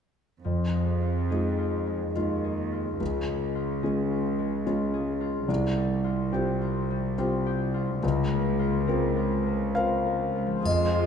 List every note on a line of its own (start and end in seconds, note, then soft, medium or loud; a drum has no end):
0.44 2.12 F2 soft
0.44 1.29 F2 soft
0.44 4.34 F3 soft
0.73 1.86 G#3 soft
1.01 1.57 F4 soft
1.30 2.12 G#3 soft
1.30 2.12 D#4 soft
1.30 2.13 F4 soft
1.30 2.43 G#4 soft
1.58 2.15 F4 soft
1.87 3.26 G#3 soft
2.16 3.01 D#2 soft
2.16 2.97 G#3 soft
2.16 2.97 D#4 soft
2.16 2.71 F4 soft
2.16 2.97 F4 soft
2.44 3.82 G#4 soft
2.72 3.54 F4 soft
3.00 3.81 C#2 soft
3.00 5.45 C#2 soft
3.00 5.51 C#3 soft
3.28 4.38 G#3 soft
3.55 4.09 F4 soft
3.83 4.62 G#3 soft
3.83 4.63 C#4 soft
3.83 4.63 F4 soft
3.83 4.92 G#4 soft
4.11 4.65 F4 soft
4.39 5.52 G#3 soft
4.66 5.45 G#3 soft
4.66 5.45 C#4 soft
4.66 5.19 F4 soft
4.66 5.45 F4 soft
4.94 5.52 G#4 soft
5.21 6.03 F4 soft
5.48 6.30 C2 soft
5.48 7.98 C2 soft
5.48 8.06 C3 soft
5.76 6.89 G3 soft
6.04 6.60 F4 soft
6.32 7.14 C4 soft
6.32 7.14 F4 soft
6.32 7.45 G4 soft
6.32 7.14 G4 soft
6.61 7.17 F4 soft
6.90 8.06 G3 soft
7.18 7.99 C4 soft
7.18 7.73 F4 soft
7.18 7.99 F4 soft
7.18 7.99 G4 soft
7.46 8.06 G4 soft
7.74 8.58 F4 soft
8.03 10.40 C#2 soft
8.03 8.85 C#2 soft
8.03 10.68 C#3 soft
8.31 9.45 A#3 soft
8.59 9.15 F4 soft
8.87 9.71 C4 soft
8.87 9.72 F4 soft
8.87 10.04 A#4 soft
8.87 9.72 A#4 soft
9.17 9.74 F4 soft
9.46 10.69 A#3 soft
9.75 10.61 C4 soft
9.75 10.34 F4 soft
9.75 10.62 F4 soft
9.75 10.62 A#4 soft
9.75 10.61 F5 medium
10.05 10.69 A#4 soft
10.36 10.54 F4 soft
10.47 11.06 F3 soft
10.51 11.06 C4 soft
10.56 11.06 F4 soft
10.60 11.06 G#4 soft
10.65 11.06 F2 soft
10.65 11.06 G#3 soft
10.65 11.06 F4 soft
10.65 11.06 D#5 soft
10.65 triangle soft